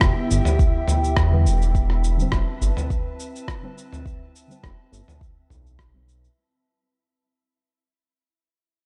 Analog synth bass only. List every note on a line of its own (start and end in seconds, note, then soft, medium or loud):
0.02 0.11 E1 loud
0.31 0.40 G1 medium
1.17 1.48 E2 loud
1.46 2.24 E1 loud
2.33 2.42 E1 medium
2.62 2.71 G1 medium
4.64 4.73 E1 medium
4.92 5.01 G1 medium
5.50 6.28 B1 medium